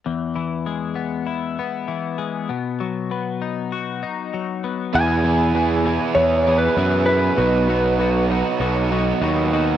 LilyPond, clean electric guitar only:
\new Staff \with { instrumentName = "Clean electric guitar" } { \time 4/4 \key e \major \tempo 4 = 98 e,8 e8 gis8 b8 e'8 b8 e8 gis8 | b,8 fis8 b8 dis'8 fis'8 dis'8 fis8 b8 | <e, b, e b e' gis'>8 <e, b, e b e' gis'>8 <e, b, e b e' gis'>8 <e, b, e b e' gis'>8 <e, b, e b e' gis'>8 <e, b, e b e' gis'>8 <e, b, e b e' gis'>8 <e, b, e b e' gis'>8 | <b, fis b dis' fis'>8 <b, fis b dis' fis'>8 <b, fis b dis' fis'>8 <b, fis b dis' fis'>8 <b, fis b dis' fis'>8 <b, fis b dis' fis'>8 <b, fis b dis' fis'>8 <b, fis b dis' fis'>8 | }